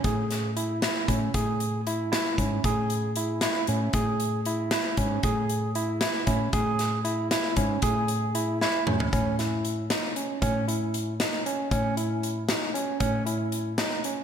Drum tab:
HH |x-x-x-x-x-|x-x-x-x-x-|x-x-x-x-x-|x-x-x-x-x-|
SD |--o---o---|------o---|------o---|------o---|
T2 |----------|----------|----------|----------|
FT |----------|----------|----------|----------|
BD |o-------o-|o-------o-|o---------|o-------o-|

HH |x-x-x-x-x-|x-x-x-x-x-|x-x-x-----|x-x-x-x-x-|
SD |------o---|--o---o---|------o---|--o---o---|
T2 |----------|----------|--------o-|----------|
FT |----------|----------|---------o|----------|
BD |o-------o-|o-------o-|o---------|o---------|

HH |x-x-x-x-x-|x-x-x-x-x-|x-x-x-x-x-|
SD |------o---|------o---|------o---|
T2 |----------|----------|----------|
FT |----------|----------|----------|
BD |o---------|o---------|o---------|